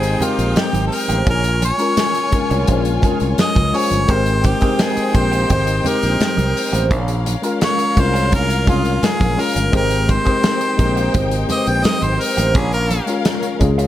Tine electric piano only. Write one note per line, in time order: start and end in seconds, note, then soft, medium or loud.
0.00 0.19 G#3 medium
0.00 0.20 C4 medium
0.00 0.21 G4 medium
0.00 0.23 A#4 loud
0.00 1.29 C5 medium
0.19 1.16 G#3 medium
0.19 1.16 C4 medium
0.19 1.17 G4 medium
0.19 1.17 A#4 medium
1.78 2.15 G#3 medium
1.78 2.15 C#4 medium
1.78 2.16 F4 medium
1.82 2.17 A#4 medium
2.31 2.80 G#3 medium
2.31 2.80 C#4 medium
2.31 2.81 F4 medium
2.31 2.82 A#4 medium
3.01 3.50 G#3 medium
3.01 3.51 C#4 medium
3.01 3.51 F4 medium
3.05 3.52 A#4 medium
3.72 3.97 G#3 medium
3.72 3.98 C#4 medium
3.72 3.98 F4 medium
3.72 3.99 C5 medium
4.08 4.44 G#3 medium
4.08 4.45 C4 medium
4.08 4.45 G4 medium
4.08 4.46 A#4 loud
4.60 4.97 G#3 medium
4.60 4.97 C4 medium
4.60 4.98 G4 medium
4.64 4.99 A#4 medium
5.13 5.62 G#3 medium
5.13 5.62 C4 medium
5.13 5.63 G4 medium
5.17 5.64 A#4 medium
5.83 6.80 G#3 medium
5.83 6.81 C4 medium
5.83 6.81 G4 medium
5.83 6.82 A#4 medium
7.42 7.79 G#3 medium
7.42 7.79 C#4 medium
7.42 7.80 F4 medium
7.42 7.81 A#4 medium
7.95 8.44 G#3 medium
7.95 8.45 C#4 medium
7.95 8.45 F4 medium
7.99 8.46 A#4 medium
8.66 9.15 G#3 medium
8.66 9.15 C#4 medium
8.66 9.16 F4 medium
8.66 9.16 A#4 medium
9.36 9.61 G#3 medium
9.36 9.62 C#4 medium
9.36 9.62 F4 medium
9.40 9.63 A#4 medium
9.72 10.08 G#3 medium
9.72 10.09 C4 medium
9.72 10.10 G4 medium
9.76 10.10 A#4 loud
10.24 10.61 G#3 medium
10.24 10.62 C4 medium
10.24 10.62 G4 medium
10.28 10.63 A#4 medium
10.77 11.26 G#3 medium
10.77 11.26 C4 medium
10.77 11.27 G4 medium
10.77 11.28 A#4 medium
11.48 12.44 G#3 medium
11.48 12.45 C4 medium
11.48 12.46 G4 medium
11.48 11.57 B4 medium
11.58 12.49 C5 medium
13.06 13.43 G#3 medium
13.06 13.44 C#4 medium
13.06 13.45 F4 medium
13.11 13.45 A#4 medium
13.60 13.87 G#3 medium
13.60 13.87 C#4 medium
13.60 13.87 F4 medium
13.60 13.87 G#4 loud